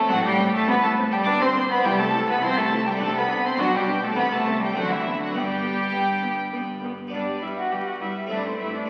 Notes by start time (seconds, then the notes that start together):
Already playing: A3 A4
0.05 A1 A2 A3 C4 D4
0.09 A2 F#3 F#4 F#5
0.23 G3 G4 G5
0.38 C4
0.54 A3 A4 A5
0.67 A1 A2 B3 C4 B4 B5
0.81 A3 A4 A5
0.97 C4
1.11 G3 G4 G5
1.21 B3 D4 G4 D6
1.25 G1 G2 B3 D4 D5
1.39 C4 C5 C6
1.55 B3
1.70 B3 B4 B5
1.78 C4 E4 G4
1.83 C2 C3 G3 E4 G4 G5
1.98 A3 A4 A5
2.14 E4
2.29 B3 B4 B5
2.41 C2 C3 C4 E4 C5 C6
2.58 A3 A4 A5
2.71 E4
2.86 G3 G4 G5
2.96 A3 D4 F#4
3.00 C2 C3 A3 D4 A4 A5
3.16 B3 B4 B5
3.29 D4
3.45 C4 C5 C6
3.55 B3 D4 G4
3.59 B1 B2 F#3 F#4 F#5
3.74 G3 G4 G5
3.87 D4
4.03 A3 A4 A5
4.12 A3 C4 G4
4.17 C2 C3 B3 B4 B5
4.32 A3 A4 A5
4.46 C4
4.60 G3 G4
4.65 G5
4.72 D3 F#3 A3 C4 D4
4.76 D2 D3 F#4 F#5
4.90 E3 E4 E5
5.05 C4
5.20 F#3 F#4 F#5
5.32 G1 G2 G3 B3 D4 G4
5.37 G5
5.64 B3
5.93 G1 G2 B3
6.23 B3
6.53 G1 G2 B3
6.83 B3
7.08 B3 D4
7.13 G1 G2 G3 D4 B4 D5
7.42 G1 G2 G3 E4 B4 E5
7.58 F#4 F#5
7.72 G1 G2 G3 G4 B4 G5
7.87 F#4 F#5
8.01 G1 G2 G3 E4 B4 E5
8.27 G1 A3 C4 E4 D5
8.31 G2 A3 D4 C5
8.46 C4 C5
8.60 G1 G2 A3 E4 C5 E5
8.75 D4 D5
8.86 A3